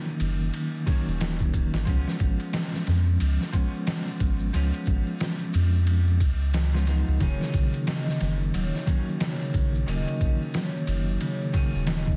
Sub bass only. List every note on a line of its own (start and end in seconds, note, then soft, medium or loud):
0.20 0.50 F#1 loud
1.07 1.70 D#1 medium
1.73 1.85 G#1 loud
1.87 2.05 C#2 loud
2.20 2.38 G#1 medium
2.88 3.17 F2 loud
3.21 3.38 C#2 medium
4.21 4.51 G#1 medium
4.54 4.71 C#2 medium
4.87 5.05 G#1 medium
5.55 6.22 F2 loud
6.20 7.03 C#2 medium
7.08 7.19 C#2 medium
7.21 7.38 D#1 loud
7.54 7.71 A#1 medium
8.21 8.51 F#1 loud
8.54 8.71 D#1 medium
9.54 9.84 A#1 medium
9.87 10.04 D#1 loud
10.21 10.38 A#1 medium
10.87 11.17 F#1 loud
11.75 12.16 D#1 medium